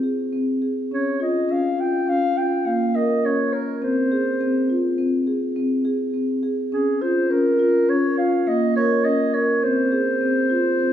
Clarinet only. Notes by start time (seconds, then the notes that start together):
0.94 C#5
1.22 D#5
1.52 F5
1.80 G5
2.09 F5
2.37 G5
2.66 F5
2.96 D#5
3.25 C#5
3.53 A#4
3.83 C5
6.73 G#4
7.02 C5
7.30 A#4
7.89 C#5
8.18 F5
8.48 D#5
8.76 C#5
9.05 D#5
9.34 C#5
9.64 C5